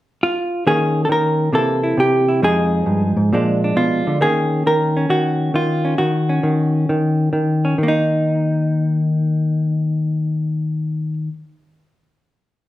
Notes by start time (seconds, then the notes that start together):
0.23 F4
0.67 D#3 A#3 C#4 G#4
1.05 A4
1.09 D#3 A#4
1.53 C3 E3 A#3 E4 A4
1.83 E4
1.97 C3 G4
2.28 E4
2.42 F2 F3 G#3 D#4 G#4
2.86 G2
3.17 G#2
3.33 A#2 F3 G#3 D4
3.64 D4
3.76 B2 F4
4.07 D3
4.21 D#3 A#3 C#4 G#4
4.67 D#3 A#4
4.97 C#4
5.10 D#3 F#4
5.54 D#3 F4
5.85 C#4
5.98 D#3 F#4
6.29 C#4
6.43 D#3
6.89 D#3
7.33 D#3
7.65 C#4
7.78 D#3
7.83 A#3
7.88 D#4